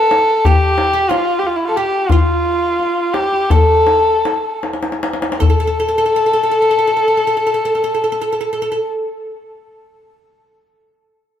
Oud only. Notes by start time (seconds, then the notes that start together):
Already playing: A4
0.46 G4
0.93 G4
1.09 F4
1.77 G4
2.12 F4
3.51 A4
5.40 A4
5.50 A4
5.60 A4
5.67 A4
5.80 A4
5.88 A4
5.98 A4
6.06 A4
6.16 A4
6.26 A4
6.33 A4
6.43 A4
6.51 A4
6.62 A4
6.71 A4
6.79 A4
6.87 A4
6.97 A4
7.08 A4
7.17 A4
7.27 A4
7.37 A4
7.47 A4
7.54 A4
7.65 A4
7.75 A4
7.84 A4
7.94 A4
8.04 A4
8.12 A4
8.21 A4
8.32 A4
8.41 A4
8.53 A4
8.62 A4
8.72 A4